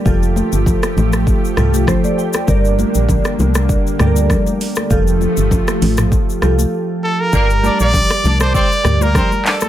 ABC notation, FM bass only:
X:1
M:4/4
L:1/16
Q:"Swing 16ths" 1/4=99
K:Gm
V:1 name="FM bass" clef=bass
F,,,3 G,,,2 z A,,,3 z C,,3 z3 | G,,,3 B,,,2 z C,,3 z D,,3 z3 | F,,,3 G,,,2 z A,,,3 z C,,2 z4 | G,,,3 B,,,2 z C,,3 z D,,3 z3 |]